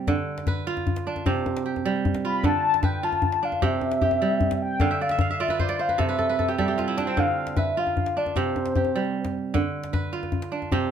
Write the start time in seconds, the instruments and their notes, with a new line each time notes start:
Already playing: kora C3 G3 D4 G4
0.07 kora D3, djembe tone, djembe bass
0.38 djembe slap
0.47 kora B4, djembe slap, djembe tone, djembe bass
0.67 kora F4
0.77 djembe slap, djembe tone
0.87 djembe bass
0.96 djembe slap
1.07 kora D4
1.16 djembe tone
1.26 kora C3 G4, djembe bass
1.46 djembe slap, djembe tone
1.57 djembe slap
1.66 kora G4
1.76 djembe tone
1.85 kora G3
1.96 djembe slap
2.05 djembe bass
2.14 djembe slap, djembe tone
2.24 kora F4, soft synth lead B5
2.44 kora D3, soft synth lead A5, djembe tone, djembe bass
2.74 djembe slap
2.83 kora B4, soft synth lead G5, djembe slap, djembe tone, djembe bass
3.03 kora F4, soft synth lead A5
3.12 djembe slap, djembe tone
3.22 djembe bass
3.32 djembe slap
3.43 kora D4, soft synth lead F5
3.52 soft synth lead F5, djembe tone
3.62 kora C3 G4, soft synth lead E5, djembe bass
3.72 djembe slap
3.81 djembe slap, djembe tone
3.91 djembe slap
4.01 kora G4, djembe bass
4.11 djembe tone
4.22 kora G3
4.30 djembe slap
4.40 djembe bass
4.51 djembe slap, djembe tone
4.62 soft synth lead G5
4.80 kora D3 F5, djembe tone, djembe bass
4.91 kora E5
5.01 kora D5, soft synth lead F5
5.09 kora E5, djembe slap
5.19 kora F5, soft synth lead F5, djembe slap, djembe tone, djembe bass
5.29 kora E5, djembe slap
5.39 kora F4 D5, soft synth lead E5, djembe slap
5.48 kora B4, djembe slap, djembe tone
5.59 kora C5, soft synth lead D5, djembe slap, djembe bass
5.69 kora D5, djembe slap
5.79 kora C5, soft synth lead F5, djembe slap
5.89 kora B4, djembe tone
5.98 kora C3 A4, soft synth lead E5, djembe slap, djembe bass
6.09 kora B4
6.19 kora A4, djembe bass
6.29 kora B4
6.39 kora A4, djembe bass
6.48 kora G4
6.58 kora G3 A4, djembe bass
6.68 kora G4
6.78 kora F4, djembe slap
6.88 kora E4
6.97 kora D4, soft synth lead G5, djembe slap
7.07 kora C4
7.17 kora D3, soft synth lead F5, djembe tone, djembe bass
7.47 djembe slap
7.57 kora B4, soft synth lead E5, djembe slap, djembe tone, djembe bass
7.77 kora F4, soft synth lead F5
7.87 djembe slap, djembe tone
7.97 djembe bass
8.06 djembe slap
8.17 kora D4, soft synth lead D5
8.26 djembe tone
8.36 kora C3 G4, soft synth lead C5, djembe bass
8.56 djembe slap, djembe tone
8.66 djembe slap
8.76 kora G4, djembe bass
8.85 djembe tone
8.96 kora G3
9.05 djembe slap
9.25 djembe slap, djembe tone
9.54 kora D3, djembe tone, djembe bass
9.84 djembe slap
9.93 kora B4, djembe slap, djembe tone, djembe bass
10.13 kora F4
10.23 djembe slap, djembe tone
10.32 djembe bass
10.42 djembe slap
10.52 kora D4
10.62 djembe tone
10.72 kora C3 G4, djembe bass
10.82 djembe slap